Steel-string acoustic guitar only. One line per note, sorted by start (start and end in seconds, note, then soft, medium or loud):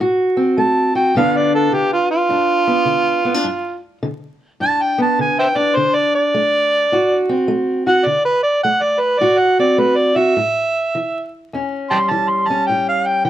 0.00 0.53 A2 medium
0.00 0.94 F#4 medium
0.37 1.12 C4 soft
0.58 1.10 A3 medium
0.95 1.12 F#4 medium
1.15 1.68 G2 medium
1.15 1.71 D3 medium
1.15 2.66 B3 medium
1.15 2.29 D4 medium
1.15 3.44 F4 medium
1.73 2.26 D3 medium
2.29 2.83 G2 medium
2.29 3.24 D4 medium
2.67 3.24 B3 soft
2.85 3.40 D3 medium
3.25 3.34 B3 medium
3.34 3.44 D4 soft
3.44 3.98 G2 medium
4.03 4.56 D3 medium
4.60 5.13 G2 medium
4.60 5.55 D4 medium
4.98 5.73 B3 soft
5.19 5.72 D3 medium
5.56 7.29 D4 medium
5.77 6.29 D3 medium
6.34 6.87 A3 medium
6.92 7.45 A2 medium
6.92 7.86 F#4 medium
7.29 8.04 C4 medium
7.48 8.01 A3 medium
7.87 8.04 F#4 medium
8.06 8.59 D3 medium
8.64 9.17 A3 medium
9.21 9.74 A2 medium
9.21 10.15 F#4 medium
9.59 10.34 C4 medium
9.78 10.32 A3 medium
10.16 10.34 F#4 medium
10.37 10.90 A2 medium
10.95 11.48 E3 medium
11.53 12.06 E2 medium
11.53 12.50 C#4 medium
11.91 13.30 G3 soft
12.11 12.64 E3 medium
12.50 13.30 C#4 medium
12.69 13.22 A2 medium
13.25 13.30 E3 medium